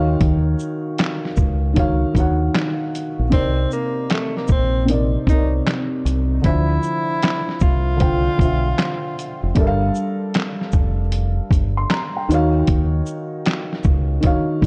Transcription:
0.00 0.15 D#2 medium
0.00 1.26 D#3 loud
0.00 1.27 D#4 medium
0.00 1.28 F#4 medium
0.00 1.28 C#5 medium
0.00 1.29 F5 loud
0.00 3.35 G5 medium
0.21 0.54 D#2 loud
0.21 kick loud
0.21 closed hi-hat medium
0.59 shaker soft
0.98 snare loud
0.98 clap medium
0.98 closed hi-hat medium
1.25 snare soft
1.36 2.04 C#2 loud
1.36 kick medium
1.36 shaker soft
1.74 2.11 D#3 medium
1.74 2.12 D#4 medium
1.74 2.13 F#4 medium
1.74 2.13 C#5 medium
1.74 kick medium
1.74 closed hi-hat medium
1.79 2.14 F5 loud
2.14 2.48 D#2 medium
2.14 3.23 D#3 medium
2.14 3.24 D#4 medium
2.14 3.24 F#4 medium
2.14 kick medium
2.14 closed hi-hat soft
2.14 shaker soft
2.18 3.25 C#5 medium
2.18 3.26 F#5 medium
2.55 snare loud
2.55 clap medium
2.55 closed hi-hat medium
2.95 closed hi-hat soft
2.95 shaker soft
3.19 3.32 A#1 medium
3.30 3.66 C2 loud
3.30 4.75 C3 medium
3.30 4.76 C4 medium
3.30 3.68 C4 medium
3.30 4.76 D#4 medium
3.30 4.77 A#4 medium
3.30 kick loud
3.30 closed hi-hat medium
3.35 4.78 D5 medium
3.71 4.14 A#3 medium
3.71 shaker soft
4.10 4.38 A3 medium
4.10 snare loud
4.10 clap medium
4.10 closed hi-hat medium
4.37 4.49 A#3 medium
4.37 snare soft
4.47 5.16 A#1 medium
4.47 kick medium
4.47 shaker soft
4.52 4.86 C4 medium
4.85 5.23 C3 medium
4.85 5.24 C4 medium
4.85 5.25 D#4 medium
4.85 closed hi-hat medium
4.90 5.25 A#4 medium
4.90 5.26 D5 medium
5.27 5.60 C2 medium
5.27 6.35 C3 medium
5.27 6.36 C4 medium
5.27 5.51 D#4 medium
5.27 6.36 D#4 medium
5.27 6.37 A#4 medium
5.27 kick loud
5.27 closed hi-hat soft
5.27 shaker soft
5.32 5.38 C#5 medium
5.38 6.41 D5 medium
5.67 snare loud
5.67 clap medium
5.67 closed hi-hat medium
6.05 6.38 C2 medium
6.05 closed hi-hat soft
6.05 shaker soft
6.42 6.78 D2 loud
6.42 7.87 D3 medium
6.42 7.88 F3 medium
6.42 7.88 D4 medium
6.42 7.58 E4 loud
6.42 kick loud
6.42 closed hi-hat medium
6.46 7.89 C5 medium
6.46 7.90 E5 medium
6.83 shaker soft
7.23 snare loud
7.23 clap medium
7.23 closed hi-hat medium
7.49 snare soft
7.60 8.28 C2 medium
7.60 9.53 F4 loud
7.60 kick medium
7.60 shaker soft
7.96 8.34 D3 medium
7.96 8.35 D4 medium
7.96 8.36 F4 medium
7.96 closed hi-hat medium
8.00 8.36 C5 medium
8.00 8.37 G5 medium
8.00 kick medium
8.37 8.72 B1 medium
8.37 9.46 D3 medium
8.37 9.47 D4 medium
8.37 9.47 F4 medium
8.37 kick loud
8.41 9.48 C5 medium
8.41 9.49 E5 medium
8.41 closed hi-hat soft
8.41 shaker soft
8.79 snare loud
8.79 clap medium
8.79 closed hi-hat medium
9.19 closed hi-hat medium
9.19 shaker soft
9.43 9.54 F1 medium
9.55 9.89 G1 loud
9.55 10.99 G3 medium
9.55 11.00 D4 medium
9.55 11.01 A4 medium
9.55 kick loud
9.55 closed hi-hat medium
9.59 11.01 A#4 medium
9.59 9.67 E5 medium
9.67 11.05 F5 loud
9.95 shaker soft
10.34 snare loud
10.34 clap medium
10.34 closed hi-hat medium
10.61 snare soft
10.72 11.39 F1 medium
10.72 kick medium
10.72 shaker soft
11.12 closed hi-hat medium
11.51 11.84 G1 medium
11.51 kick medium
11.51 closed hi-hat soft
11.51 shaker soft
11.77 11.90 C6 medium
11.90 12.15 A#5 medium
11.90 snare loud
11.90 clap medium
11.90 closed hi-hat medium
12.16 12.53 G5 medium
12.28 12.62 D#2 medium
12.28 13.73 D#3 medium
12.28 13.73 D#4 medium
12.28 13.74 F#4 medium
12.28 13.74 C#5 medium
12.28 closed hi-hat medium
12.28 shaker soft
12.34 13.75 F5 loud
12.67 13.01 D#2 loud
12.67 kick loud
12.67 closed hi-hat medium
13.06 shaker soft
13.46 snare loud
13.46 clap medium
13.46 closed hi-hat medium
13.73 snare soft
13.84 14.18 C#2 medium
13.84 kick medium
13.84 shaker soft
14.21 14.58 D#3 medium
14.21 14.59 D#4 medium
14.21 14.60 F#4 medium
14.21 kick medium
14.21 closed hi-hat medium
14.25 14.60 C#5 medium
14.25 14.61 F5 loud
14.61 14.66 D#2 medium
14.61 14.66 D#3 medium
14.61 14.66 D#4 medium
14.61 kick loud

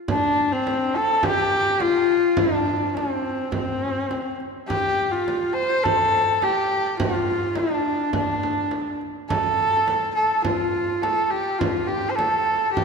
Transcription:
0.08 0.53 D4 medium
0.08 frame drum medium
0.38 frame drum soft
0.52 0.98 C4 medium
0.67 frame drum medium
0.95 1.26 A4 loud
0.95 frame drum soft
1.23 1.83 G4 loud
1.23 frame drum medium
1.80 2.40 F4 loud
1.80 frame drum medium
2.09 frame drum soft
2.37 2.98 D4 medium
2.37 frame drum medium
2.67 frame drum soft
2.96 3.53 C4 medium
2.96 frame drum medium
3.25 frame drum soft
3.52 4.36 C4 medium
3.52 frame drum medium
4.11 frame drum medium
4.40 frame drum soft
4.68 5.13 G4 loud
4.68 frame drum medium
4.99 frame drum soft
5.12 5.55 F4 medium
5.28 frame drum medium
5.54 5.85 C5 loud
5.54 frame drum soft
5.84 6.45 A4 loud
5.84 frame drum medium
6.42 6.99 G4 loud
6.42 frame drum medium
6.71 frame drum soft
6.99 7.59 F4 medium
6.99 frame drum medium
7.28 frame drum soft
7.56 8.15 D4 medium
7.56 frame drum medium
7.84 frame drum soft
8.13 8.97 D4 medium
8.13 frame drum medium
8.43 frame drum medium
8.71 frame drum medium
9.01 frame drum soft
9.29 10.11 A4 loud
9.29 frame drum medium
9.59 frame drum soft
9.88 frame drum medium
10.15 10.42 A4 medium
10.15 frame drum soft
10.44 11.03 F4 medium
10.44 frame drum medium
11.02 11.32 A4 medium
11.02 frame drum medium
11.31 11.61 G4 medium
11.31 frame drum soft
11.59 11.89 F4 medium
11.59 frame drum medium
11.87 12.12 G4 medium
11.87 frame drum soft
12.11 12.17 C5 medium
12.15 12.72 A4 medium
12.15 frame drum medium
12.47 frame drum soft
12.72 12.84 G4 medium
12.77 frame drum medium

